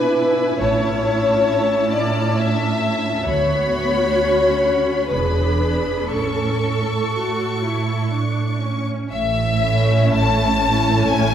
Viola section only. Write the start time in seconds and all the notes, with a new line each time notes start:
Already playing: D4 E4
0.60 C#4
3.29 B3 F#4
4.19 C#4
5.13 D4 G#4
6.14 C#4 A4
7.14 F#4
7.63 E4
8.12 D4
8.62 C#4
9.62 A3 C#4
10.62 A3 C#4